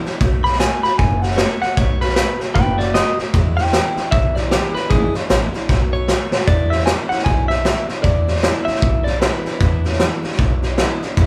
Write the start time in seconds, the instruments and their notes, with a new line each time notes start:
0.05 steel-string acoustic guitar E3 G#3 D4 E4, muted upright bass stroke, snare
0.20 upright bass B1, steel-string acoustic guitar B2 D#3 A3 B3 F#4, kick, snare
0.44 steel-string acoustic guitar A3 B3 F#4, clean electric guitar B5, snare
0.52 snare
0.59 steel-string acoustic guitar B2 D#3 A3 B3 F#4, clean electric guitar G#5, snare, hi-hat pedal
0.83 steel-string acoustic guitar A3 B3 F#4, clean electric guitar B5, muted upright bass stroke, snare
0.98 upright bass F#1, steel-string acoustic guitar D#3 A3 B3 F#4, clean electric guitar G#5, kick, snare
1.22 steel-string acoustic guitar A3 B3 F#4, clean electric guitar F#5, snare
1.30 snare
1.37 steel-string acoustic guitar B2 D#3 A3 B3 F#4, clean electric guitar C#5, snare, hi-hat pedal
1.62 steel-string acoustic guitar A3 B3 F#4, clean electric guitar F#5, muted upright bass stroke, snare
1.77 upright bass B1, steel-string acoustic guitar B2 D#3 A3 B3 F#4, clean electric guitar C#5, kick, snare
2.01 steel-string acoustic guitar A3 B3 F#4, clean electric guitar B4, snare
2.08 snare
2.16 steel-string acoustic guitar B2 D#3 A3 B3 F#4, clean electric guitar B4, snare, hi-hat pedal
2.40 steel-string acoustic guitar A3 B3 F#4, muted upright bass stroke, snare
2.54 upright bass F#1, steel-string acoustic guitar D#3 A3 B3, clean electric guitar B4 G5, kick, snare
2.59 steel-string acoustic guitar F#4
2.78 steel-string acoustic guitar A3 B3 F#4, clean electric guitar F#4 D5, snare
2.94 steel-string acoustic guitar B2 D#3 A3 B3 F#4, clean electric guitar D#5, snare, hi-hat pedal
3.18 steel-string acoustic guitar A3 B3 F#4, muted upright bass stroke, snare
3.34 upright bass E2, steel-string acoustic guitar E2 B2 E3 G#3 D4 E4, kick, snare
3.57 steel-string acoustic guitar E3 G#3 D4 E4, clean electric guitar G5, snare
3.66 snare
3.73 steel-string acoustic guitar E2 B2 E3 G#3 D4 E4, snare, hi-hat pedal
3.96 steel-string acoustic guitar E3 G#3 D4 E4, muted upright bass stroke, snare
4.11 upright bass B1, steel-string acoustic guitar E3 G#3 D4 E4, clean electric guitar E5, kick, snare
4.35 steel-string acoustic guitar E3 G#3 D4 E4, clean electric guitar D5, snare
4.51 steel-string acoustic guitar E2 B2 E3 G#3 D4 E4, clean electric guitar G4, snare, hi-hat pedal
4.75 steel-string acoustic guitar E3 G#3 D4 E4, clean electric guitar B4, muted upright bass stroke, snare
4.90 upright bass G#1, steel-string acoustic guitar E2 B2 E3 G#3 D4 E4, clean electric guitar G#4, kick, snare
5.14 steel-string acoustic guitar E3 G#3 D4 E4, muted upright bass stroke, snare
5.29 upright bass A1, steel-string acoustic guitar E2 B2 E3 G#3 D4 E4, snare, hi-hat pedal
5.54 steel-string acoustic guitar E3 G#3 D4 E4, muted upright bass stroke, snare
5.69 upright bass B1, steel-string acoustic guitar D#3 A3 B3 F#4, kick, snare
5.93 steel-string acoustic guitar A3 B3 F#4, clean electric guitar C#5
6.08 steel-string acoustic guitar B2 D#3 A3 B3 F#4, snare, hi-hat pedal
6.32 steel-string acoustic guitar A3 B3 F#4, muted upright bass stroke, snare
6.47 upright bass E2, steel-string acoustic guitar E2 B2 E3 G#3 D4 E4, clean electric guitar D5, kick, snare
6.70 steel-string acoustic guitar E3 G#3 D4 E4, clean electric guitar E5, snare
6.79 snare
6.86 steel-string acoustic guitar E2 B2 E3 G#3 D4 E4, clean electric guitar G#5, snare, hi-hat pedal
7.09 steel-string acoustic guitar E3 G#3 D4 E4, clean electric guitar F#5, muted upright bass stroke, snare
7.18 snare
7.24 upright bass B1, steel-string acoustic guitar E3 G#3 D4 E4, clean electric guitar G#5, kick, snare
7.48 steel-string acoustic guitar E3 G#3 D4 E4, clean electric guitar E5, snare
7.65 steel-string acoustic guitar E2 B2 E3 G#3 D4 E4, snare, hi-hat pedal
7.89 steel-string acoustic guitar E3 G#3 D4 E4, muted upright bass stroke, snare
8.03 steel-string acoustic guitar E2 B2 E3 G#3 D4 E4, upright bass E2, clean electric guitar D5, kick, snare
8.27 steel-string acoustic guitar E3 G#3 D4 E4, snare
8.35 snare
8.42 steel-string acoustic guitar E2 B2 E3 G#3 D4 E4, snare, hi-hat pedal
8.65 steel-string acoustic guitar E3 G#3 D4 E4, clean electric guitar E5, muted upright bass stroke, snare
8.75 snare
8.82 upright bass B1, steel-string acoustic guitar E3 G#3 D4 E4, kick, snare
9.04 steel-string acoustic guitar E3 G#3 D4 E4, clean electric guitar D5, snare
9.19 steel-string acoustic guitar E2 B2 E3 G#3 D4 E4, clean electric guitar B4, snare, hi-hat pedal
9.45 steel-string acoustic guitar E3 G#3 D4 E4, muted upright bass stroke, snare
9.60 upright bass E2, steel-string acoustic guitar E2 B2 E3 G#3 D4 E4, kick, snare
9.84 steel-string acoustic guitar E3 G#3 D4 E4, snare
9.92 snare
9.99 steel-string acoustic guitar E2 B2 E3 G#3 D4 E4, snare, hi-hat pedal
10.23 steel-string acoustic guitar E3 G#3 D4 E4, muted upright bass stroke, snare
10.31 snare
10.39 upright bass B1, steel-string acoustic guitar E3 G#3 D4 E4, kick, snare
10.63 steel-string acoustic guitar E3 G#3 D4 E4, snare
10.78 steel-string acoustic guitar E2 B2 E3 G#3 D4 E4, snare, hi-hat pedal
11.02 steel-string acoustic guitar E3 G#3 D4 E4, muted upright bass stroke, snare
11.17 upright bass E2, steel-string acoustic guitar E2 B2 E3 G#3 D4 E4, kick, snare